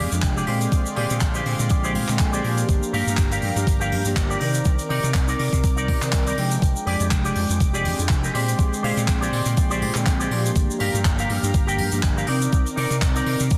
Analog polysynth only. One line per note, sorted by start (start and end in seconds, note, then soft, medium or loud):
0.11 0.45 F3 medium
0.11 0.45 G#3 medium
0.11 0.45 D4 medium
0.11 0.45 G5 loud
0.46 2.05 D3 medium
0.46 2.05 G#3 medium
0.46 2.05 C4 medium
0.46 2.06 G5 medium
2.08 2.41 D3 medium
2.08 2.41 G#3 medium
2.08 2.42 C4 medium
2.08 2.42 G5 loud
2.43 4.02 F3 medium
2.43 4.02 A#3 medium
2.43 4.02 D4 medium
2.43 4.03 G4 loud
4.05 4.38 F3 medium
4.05 4.38 A#3 medium
4.05 4.38 D4 medium
4.05 4.39 G4 medium
4.40 5.99 D#3 medium
4.40 5.99 C4 medium
4.40 5.99 A#4 medium
4.40 5.99 D5 medium
6.02 6.35 D#3 medium
6.02 6.35 C4 medium
6.02 6.35 A#4 medium
6.02 6.35 D5 medium
6.37 7.95 F3 medium
6.37 7.95 G#3 medium
6.37 7.96 D4 medium
6.37 7.96 G5 medium
7.98 8.31 F3 medium
7.98 8.32 G#3 medium
7.98 8.32 D4 medium
7.98 8.32 G5 medium
8.33 9.92 D3 medium
8.33 9.92 G#3 medium
8.33 9.92 C4 medium
8.33 9.93 G5 medium
9.95 10.28 D3 medium
9.95 10.28 G#3 medium
9.95 10.29 C4 medium
9.95 10.29 G5 medium
10.30 11.89 F3 medium
10.30 11.89 A#3 medium
10.30 11.89 D4 medium
10.30 11.89 G4 medium
11.92 12.25 F3 medium
11.92 12.25 A#3 medium
11.92 12.25 D4 medium
11.92 12.26 G4 loud
12.27 13.58 D#3 medium
12.27 13.58 C4 medium
12.27 13.58 A#4 medium
12.27 13.58 D5 medium